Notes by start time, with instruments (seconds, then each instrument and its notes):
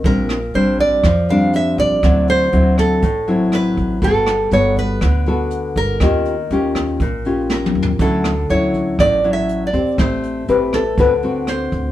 0.04 upright bass A#1, nylon-string guitar A#2 G3 C4 D4 A#4, kick, closed hi-hat
0.29 cross-stick, closed hi-hat
0.54 upright bass A#1, nylon-string guitar G3 C4 D4 C5, closed hi-hat
0.79 nylon-string guitar D5, kick, closed hi-hat
1.03 upright bass F2, nylon-string guitar F3, kick, cross-stick, closed hi-hat
1.29 nylon-string guitar G3 C4 D4 F5, closed hi-hat
1.53 nylon-string guitar E5, closed hi-hat
1.78 upright bass A#1, nylon-string guitar D5, kick, closed hi-hat
2.03 upright bass D2, nylon-string guitar D3 F#3 C4 E4, kick, cross-stick, closed hi-hat
2.28 nylon-string guitar C5, closed hi-hat
2.52 upright bass D2, nylon-string guitar F#3 C4 E4, closed hi-hat
2.78 nylon-string guitar A4, kick, cross-stick, closed hi-hat
3.02 upright bass A1, nylon-string guitar A2, kick, closed hi-hat
3.27 nylon-string guitar F#3 C4 E4, closed hi-hat
3.52 nylon-string guitar B4, cross-stick, closed hi-hat
3.77 upright bass A1, kick, closed hi-hat
4.02 upright bass G1, nylon-string guitar G3 B3 F#4 A4, kick, closed hi-hat
4.27 cross-stick, closed hi-hat
4.51 upright bass G1, nylon-string guitar B3 F#4 A4 C#5, closed hi-hat
4.76 nylon-string guitar B4, kick, closed hi-hat
5.01 upright bass D2, nylon-string guitar D3, kick, cross-stick, closed hi-hat
5.26 nylon-string guitar B3 F#4 A4, closed hi-hat
5.51 closed hi-hat
5.76 upright bass G1, nylon-string guitar A#4, kick, closed hi-hat
6.00 upright bass D#2, nylon-string guitar D#3 C#4 F4 G4, kick, cross-stick, closed hi-hat
6.25 closed hi-hat
6.50 upright bass D#2, nylon-string guitar C#4 F4 G4, closed hi-hat
6.75 kick, cross-stick, closed hi-hat
7.00 upright bass A#1, nylon-string guitar A#2, kick, closed hi-hat
7.25 nylon-string guitar C#4 F4 G4, closed hi-hat
7.50 nylon-string guitar A#4, snare
7.66 mid tom
7.75 upright bass D#2
7.82 floor tom
7.99 upright bass D2, nylon-string guitar D3 F#3 C#4 E4 A4, kick, closed hi-hat
8.24 cross-stick, closed hi-hat
8.49 upright bass D2, nylon-string guitar F#3 C#4 E4 C#5, closed hi-hat
8.74 kick, closed hi-hat
8.99 upright bass A1, nylon-string guitar A2 D5, kick, cross-stick, closed hi-hat
9.24 nylon-string guitar F#3 C#4 E4, closed hi-hat
9.33 nylon-string guitar E5
9.49 closed hi-hat
9.67 nylon-string guitar D5
9.73 upright bass E2, nylon-string guitar C4 G4, kick, closed hi-hat
9.98 upright bass A1, nylon-string guitar A3 C5, kick, cross-stick, closed hi-hat
10.23 closed hi-hat
10.48 upright bass A1, nylon-string guitar C4 G4 B4, closed hi-hat
10.73 nylon-string guitar A4, kick, cross-stick, closed hi-hat
10.98 upright bass D2, nylon-string guitar D3 C4 F#4 B4, kick, closed hi-hat
11.22 nylon-string guitar C4 F#4, closed hi-hat
11.47 nylon-string guitar C5, cross-stick, closed hi-hat
11.72 upright bass D2, kick, closed hi-hat